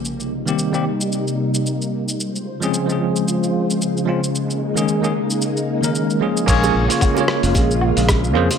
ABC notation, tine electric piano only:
X:1
M:4/4
L:1/16
Q:"Swing 16ths" 1/4=112
K:Bbdor
V:1 name="Tine electric piano"
z3 [E,G,B,CG]2 [E,G,B,CG] z8 z2 | z3 [F,A,CDA]2 [F,A,CDA]8- [F,A,CDA] [F,A,CDF] z | z3 [E,A,B,DA]2 [E,A,B,DA] z4 z [E,A,B,DB]3 [F,A,B,DA]2 | [B,DFAd]3 [B,DFAd]2 [B,DFAd]8- [B,DFAd] [B,DFAc] z |]